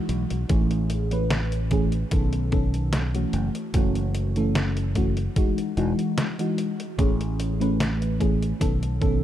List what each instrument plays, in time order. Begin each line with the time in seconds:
Already playing: fm electric piano E3 G#3 D#4 F#4
0.09 fingered electric bass B1, closed hi-hat
0.30 fingered electric bass B1, closed hi-hat
0.49 fingered electric bass A1, fm electric piano E3 A3 C#4 G#4, kick, closed hi-hat
0.71 closed hi-hat
0.90 closed hi-hat
1.11 fm electric piano E3 A3 C#4 B4, closed hi-hat
1.30 snare, closed hi-hat
1.52 closed hi-hat
1.71 fm electric piano E3 A3 C#4 G#4, kick, closed hi-hat
1.92 closed hi-hat
2.11 fingered electric bass B1, fm electric piano D#3 B3 C#4 A4, kick, closed hi-hat
2.33 closed hi-hat
2.51 fm electric piano D#3 B3 C#4 A4, kick, closed hi-hat
2.74 closed hi-hat
2.93 snare, closed hi-hat
3.14 fm electric piano E3 A3 C#4 F#4, closed hi-hat
3.33 fingered electric bass F#1, closed hi-hat
3.55 closed hi-hat
3.74 fingered electric bass F#1, fm electric piano E3 A3 C#4 F#4, kick, closed hi-hat
3.95 closed hi-hat
4.15 closed hi-hat
4.36 fm electric piano E3 A3 C#4 A4, closed hi-hat
4.55 snare, closed hi-hat
4.77 closed hi-hat
4.95 fm electric piano E3 A3 C#4 F#4, kick, closed hi-hat
5.17 closed hi-hat
5.36 fm electric piano E3 G#3 D#4 F#4, kick, closed hi-hat
5.58 closed hi-hat
5.77 fingered electric bass E1, fm electric piano E3 G#3 D#4 F#4, closed hi-hat
5.99 closed hi-hat
6.18 snare, closed hi-hat
6.39 fm electric piano E3 G#3 D#4 F#4, closed hi-hat
6.58 closed hi-hat
6.80 closed hi-hat
6.98 fingered electric bass A1, fm electric piano E3 A3 C#4 G#4, kick, closed hi-hat
7.21 closed hi-hat
7.40 closed hi-hat
7.60 fm electric piano E3 A3 C#4 B4, closed hi-hat
7.80 snare, closed hi-hat
8.02 closed hi-hat
8.19 fm electric piano E3 A3 C#4 G#4, kick, closed hi-hat
8.43 closed hi-hat
8.60 fingered electric bass B1, fm electric piano D#3 B3 C#4 A4, kick, closed hi-hat
8.83 closed hi-hat
9.01 fm electric piano D#3 B3 C#4 A4, kick, closed hi-hat